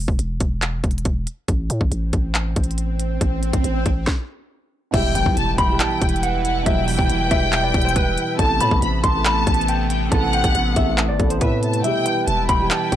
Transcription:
0.08 E1, kick
0.19 E1, closed hi-hat
0.40 E1, kick, closed hi-hat
0.62 clap, closed hi-hat
0.84 E1, kick, closed hi-hat
0.91 closed hi-hat
0.98 closed hi-hat
1.05 E1, kick, closed hi-hat
1.27 closed hi-hat
1.48 A1, kick, closed hi-hat, swell
1.70 A2, closed hi-hat
1.81 A1, kick
1.91 A1, closed hi-hat
2.13 A1, kick, closed hi-hat
2.35 clap, closed hi-hat
2.56 A1, kick, closed hi-hat
2.64 closed hi-hat
2.71 closed hi-hat
2.78 closed hi-hat
3.00 closed hi-hat
3.21 A1, kick, closed hi-hat
3.43 closed hi-hat
3.53 A1, kick, closed hi-hat
3.64 A1, closed hi-hat
3.86 A1, kick, closed hi-hat
4.07 kick, snare
4.91 E1 B2 E3 G3 E4 B4 E5 G5, kick, closed hi-hat, crash, impact
4.96 G4
5.15 E1 G5, closed hi-hat
5.26 B1, kick
5.37 E1 A5, closed hi-hat
5.58 E1 G5 B5, kick, closed hi-hat
5.66 B2 E3 G3 E4
5.72 G4
5.80 A5, clap, closed hi-hat
6.01 E1 G5, kick, closed hi-hat
6.09 closed hi-hat
6.16 closed hi-hat
6.23 F#5, closed hi-hat
6.45 F#5, closed hi-hat
6.63 E1 B2 E3 G3 E4 E5 G5, kick, closed hi-hat
6.68 F#3
6.88 G5, open hi-hat
6.99 E1, kick
7.10 E1, closed hi-hat
7.28 E1 B2 E3 G3 E4 E5, kick, closed hi-hat
7.33 G4
7.39 B2 E3 G3 E4
7.45 G4
7.53 clap, closed hi-hat
7.64 D5
7.71 E1 B2 E3 G3 E4, kick, closed hi-hat
7.77 G4
7.81 C5, closed hi-hat
7.89 closed hi-hat
7.96 E1 B4, kick, closed hi-hat
8.18 closed hi-hat
8.36 A1 C3 A3 B3 E4 A5, kick, closed hi-hat
8.41 A4
8.61 A2 B5, closed hi-hat
8.71 A1, kick
8.82 A1 B5, closed hi-hat
9.04 A1 A5 C6, kick, closed hi-hat
9.12 C3 A3 B3 E4
9.17 A4
9.25 B5, clap, closed hi-hat
9.47 A1 A5, kick, closed hi-hat
9.54 closed hi-hat
9.61 closed hi-hat
9.68 G5, closed hi-hat
9.90 G5, closed hi-hat
10.09 A1 C3 A3 B3 E4 F#5 A5, kick, closed hi-hat
10.14 A4
10.33 G5, closed hi-hat
10.44 A1, kick, closed hi-hat
10.55 A1, closed hi-hat
10.74 A1 C3 A3 B3 E4 E5, kick, closed hi-hat
10.79 A4
10.84 C3 A3 B3 E4
10.89 A4
10.98 clap, closed hi-hat
11.09 G1 D5
11.17 A1 C3 A3 B3 E4, kick, closed hi-hat
11.22 A4
11.30 C5, closed hi-hat
11.41 A2 B4 E5, kick, closed hi-hat
11.63 A5, closed hi-hat
11.73 closed hi-hat
11.82 B2 E3 G3 E4 B4 E5 G5, closed hi-hat
11.87 G4
12.06 G5, closed hi-hat
12.27 E1 A5, closed hi-hat
12.49 E1 G5 B5, kick, closed hi-hat
12.57 B2 E3 G3 E4
12.62 G4
12.71 A5, clap, closed hi-hat
12.92 E1 G5, kick, closed hi-hat

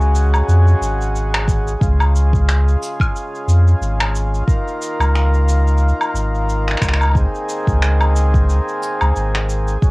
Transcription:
Already playing: C#2 C#3 G#3 F#4 G#4
0.01 cabasa
0.15 cabasa
0.34 cabasa, low woodblock
0.48 F2, cabasa
0.68 cabasa
0.81 G#1, cabasa
1.01 cabasa
1.16 cabasa
1.34 finger snap, cabasa, low woodblock
1.48 kick, cabasa
1.68 cabasa
1.81 C#2 F4, kick, cabasa
2.00 cabasa, low woodblock
2.16 cabasa
2.33 kick, cabasa
2.49 finger snap, cabasa
2.68 cabasa
2.83 cabasa
3.00 kick, cabasa, low woodblock
3.16 cabasa
3.35 cabasa
3.48 F2, cabasa
3.68 cabasa
3.81 G#1, cabasa
4.00 finger snap, cabasa, low woodblock
4.15 cabasa
4.34 cabasa
4.47 D#3 A#3 A#4, kick, cabasa
4.68 cabasa
4.82 cabasa
5.00 C#2, cabasa, low woodblock
5.16 finger snap, cabasa
5.34 cabasa
5.49 cabasa
5.68 cabasa
5.78 cabasa
5.89 cabasa
6.01 cabasa, low woodblock
6.14 G#1, cabasa
6.35 cabasa
6.49 cabasa
6.68 finger snap, cabasa
6.71 finger snap
6.77 finger snap
6.81 C#2, finger snap, kick, cabasa
6.88 finger snap
6.94 finger snap
7.01 cabasa, low woodblock
7.03 low woodblock
7.05 low woodblock
7.07 low woodblock
7.09 low woodblock
7.11 low woodblock
7.13 C4 G#4, kick, cabasa, low woodblock
7.35 cabasa
7.49 cabasa
7.67 C#2, kick, cabasa
7.82 finger snap, cabasa
8.01 cabasa, low woodblock
8.16 cabasa
8.34 kick, cabasa
8.50 cabasa
8.69 cabasa
8.83 cabasa
9.01 C#2, cabasa, low woodblock
9.16 G#1, cabasa
9.35 finger snap, cabasa
9.50 cabasa
9.68 cabasa
9.82 F#3 G#3 C#4, kick, cabasa

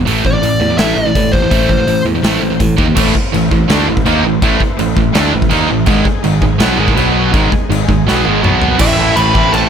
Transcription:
0.00 E2
0.07 A1 A2 E3 A3, open hi-hat
0.25 A1 A2 E3 D5, kick
0.34 A2 E3
0.42 A1 A2 E3, open hi-hat
0.61 E2 A2 E3
0.71 A2 E3
0.78 A1 A2 E3 A3 E5, snare, open hi-hat
0.94 A1 D5
0.98 A2 E3
1.06 A2 E3
1.15 A2 E3, kick, open hi-hat
1.32 A1 A2 E3 C5, kick
1.42 A2 E3
1.51 A1 A2 E3 A3, kick, open hi-hat
1.68 A1 A2 E3, kick
1.77 A2 E3
1.87 A1 A2 E3, open hi-hat
2.05 E2 A2 E3
2.14 A2 E3
2.22 A1 A2 E3 A3, snare, open hi-hat
2.42 A1 A2 E3
2.52 A2 E3
2.59 A2 E3, kick, open hi-hat
2.78 D#2 D#3 A#3 D#4, kick
2.86 D#3 A#3
2.96 A1 A2 E3 A3 E4 B4 C5, kick, crash, china
3.15 muted distorted electric guitar stroke, kick
3.34 A1 A2 E3, china
3.51 A1 A2 E3, kick
3.69 D2 D3 A3 D4, snare, china
3.88 A1 A2 E3
3.97 kick
4.05 D#2 D#3 A#3 D#4, china
4.23 A1 A2 E3
4.42 A1 A2 E3 A3, kick, china
4.60 muted distorted electric guitar stroke, kick
4.79 A1 A2 E3, china
4.97 A1 A2 E3, kick
5.14 D2 D3 A3 D4, snare, china
5.33 A1 A2 E3
5.42 kick
5.51 D#2 D#3 A#3 D#4, china
5.70 A1 A2 E3
5.86 G#1 G#2 D#3 G#3 D#4 G#4 G#5, kick, china
6.05 muted distorted electric guitar stroke, kick
6.24 G#1 G#2 D#3, china
6.42 G#1 G#2 D#3, kick
6.60 B1 B2 F#3 B3, snare, china
6.78 G#1 G#2 D#3 G#3
6.88 kick
6.94 B1 B2 F#3 B3 F#4 B4 B5, china
7.32 G#1 G#2 D#3 G#3 D#4 G#4 G#5, kick, china
7.52 muted distorted electric guitar stroke, kick
7.70 G#1 G#2 D#3, china
7.88 G#1 G#2 D#3, kick
8.06 B1 B2 F#3 B3, snare
8.25 G#1 G#2 D#3 G#3, high tom
8.43 B1 B2 F#3 B3 F#4 B4 B5, mid tom
8.62 floor tom
8.78 A1 A2 E3 A3 C4 E4 A4 E5 A5, kick, crash
8.97 A2 E3 A3
9.16 A1 A2 E3 A3 B4 B5, crash
9.33 A1 A2 E3 A3 C4 E4, kick
9.52 A1 A2 E3 A3 A4 A5, crash

